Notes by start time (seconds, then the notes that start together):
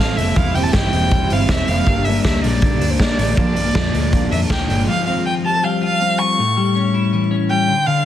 Already playing: F3 G3 C4 F4 A4 F5
0.00 A1 F4
0.17 F1 A4 E5, open hi-hat
0.36 E1 E3 G3 C4 E4 F5, kick, closed hi-hat
0.55 G3 C4 E4 G5, open hi-hat
0.63 A5
0.72 G1 E3 G3 C4 E4 G5, kick, snare, closed hi-hat
0.76 E4
0.93 E1 C4, open hi-hat
1.11 E3 G3 C4 E4, kick, closed hi-hat
1.30 G1 G3 C4 E4 F5, open hi-hat
1.49 E1 C4 E5, kick, snare, closed hi-hat
1.68 F1 G3 C4 E4 F5, open hi-hat
1.87 G1 G2 D3 G3 A#3 D4, kick, closed hi-hat
2.05 A#3 D4 E5, open hi-hat
2.09 G3
2.24 D2 D3 G3 A#3 D4 E5, kick, snare, closed hi-hat
2.43 A#1 A#3 D4 D5, open hi-hat
2.47 G3
2.62 G2 D3 G3 A#3 D4, kick, closed hi-hat
2.80 D2 G3 A#3 D4, open hi-hat
2.90 C5
2.99 A#1 A#3 D5, kick, snare, closed hi-hat
3.18 A1 G3 A#3 D4, open hi-hat
3.37 A#1 A#2 D3 F3 A#3 D4 D5, kick
3.56 F3 A#3 D4, open hi-hat
3.74 F2 D3 F3 A#3 D4, kick, snare, closed hi-hat
3.93 D2 A#3, open hi-hat
4.12 A#2 D3 F3 A#3 D4, kick, closed hi-hat
4.30 F2 F3 A#3 D4 E5, open hi-hat
4.50 D2 A#3 G5, kick, snare
4.69 G1 D4 G5, open hi-hat
4.88 F3 F5
5.06 C4 F5
5.25 F4 G5
5.45 G4 A5
5.54 A4
5.63 G3 F5
5.82 F4 F5
6.01 C4
6.19 F4 C#6
6.38 A2
6.57 G3
6.75 C#4
6.94 E4
7.13 E3
7.31 C#4
7.50 G3 G5
7.68 D3
7.86 D3 F5